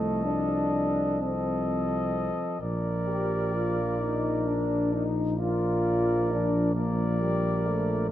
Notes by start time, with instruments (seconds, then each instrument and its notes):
Already playing: tuba C2, trombone F3, trombone section A3, flugelhorn A4, cornet D#5
0.24 trombone section D4
1.21 trombone F3, trombone section C4, flugelhorn A4, cornet D#5
2.61 tuba A#1, trombone F3, flugelhorn A#4, cornet D5
3.07 trombone section G4
3.54 trombone section F4
4.00 trombone section D#4
4.46 trombone section D4
4.92 trombone section D#4
5.37 trombone F3, trombone section F4, flugelhorn A#4, cornet D5
6.30 trombone section D4
6.74 trombone F3, trombone section A#3, flugelhorn A#4, cornet D5
7.21 trombone section G3
7.66 trombone section A3